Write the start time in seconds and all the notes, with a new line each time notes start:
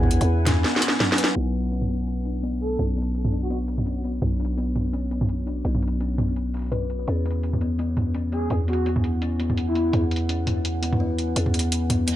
Already playing: E2 E4 B4 F#5 G#5
0.03 mid tom
0.11 B3, closed hi-hat
0.21 E2, closed hi-hat
0.46 D4, snare, closed hi-hat, mid tom
0.64 B3, snare
0.76 snare
0.79 snare
0.81 snare, closed hi-hat
0.83 snare
0.88 snare
1.00 F#3, snare, mid tom
1.12 snare
1.18 B4, closed hi-hat
1.24 snare
1.36 B1 B3, closed hi-hat
1.46 F#4 C#5
1.54 closed hi-hat
1.59 closed hi-hat
1.62 closed hi-hat
1.65 closed hi-hat
1.68 closed hi-hat
1.70 C#4, closed hi-hat
1.73 closed hi-hat
1.82 mid tom
1.89 B3, closed hi-hat
2.07 closed hi-hat
2.25 D4, closed hi-hat
2.43 B3, closed hi-hat
2.61 A4, closed hi-hat
2.79 B1 C#4, closed hi-hat, mid tom
2.96 B3, closed hi-hat
3.02 closed hi-hat
3.15 closed hi-hat
3.25 mid tom
3.32 D4, closed hi-hat
3.42 F#4
3.50 B3 F#4, closed hi-hat
3.68 closed hi-hat
3.78 mid tom
3.86 C#4, closed hi-hat
4.04 B3, closed hi-hat
4.22 B1, closed hi-hat, mid tom
4.40 D4, closed hi-hat
4.45 closed hi-hat
4.57 B3, closed hi-hat
4.76 closed hi-hat, mid tom
4.93 C#4, closed hi-hat
5.11 B3, closed hi-hat
5.21 mid tom
5.29 closed hi-hat
5.47 D4, closed hi-hat
5.65 B1 B3, closed hi-hat
5.75 mid tom
5.83 closed hi-hat
5.87 closed hi-hat
6.00 C#4, closed hi-hat
6.18 B3, closed hi-hat, mid tom
6.36 closed hi-hat
6.54 closed hi-hat
6.57 closed hi-hat
6.59 closed hi-hat
6.62 closed hi-hat
6.64 closed hi-hat
6.66 closed hi-hat
6.68 closed hi-hat
6.70 B4, closed hi-hat
6.72 closed hi-hat, mid tom
6.90 closed hi-hat
7.07 E2 C#4 E4, closed hi-hat
7.23 B3 B4 F#5, closed hi-hat
7.31 closed hi-hat
7.43 closed hi-hat
7.53 mid tom
7.61 B3 G#5, closed hi-hat
7.79 B3, closed hi-hat
7.97 closed hi-hat, mid tom
8.15 C#4, closed hi-hat
8.32 B3 G#4, closed hi-hat
8.50 E2, closed hi-hat, mid tom
8.68 B3 F#4, closed hi-hat
8.73 closed hi-hat
8.86 B3, closed hi-hat
8.96 mid tom
9.04 closed hi-hat
9.22 C#4, closed hi-hat
9.39 B3, closed hi-hat
9.50 mid tom
9.57 closed hi-hat
9.67 E4
9.75 B3, closed hi-hat
9.93 E2 B3, closed hi-hat, mid tom
10.11 closed hi-hat
10.16 closed hi-hat
10.29 C#4, closed hi-hat
10.47 B3, closed hi-hat, mid tom
10.65 closed hi-hat
10.82 B3, closed hi-hat
10.93 mid tom
11.00 B3
11.19 closed hi-hat
11.36 E2 C#4, closed hi-hat
11.46 mid tom
11.54 B3, closed hi-hat
11.59 closed hi-hat
11.72 closed hi-hat
11.90 B3, closed hi-hat, mid tom
12.07 B3, closed hi-hat, reverse cymbal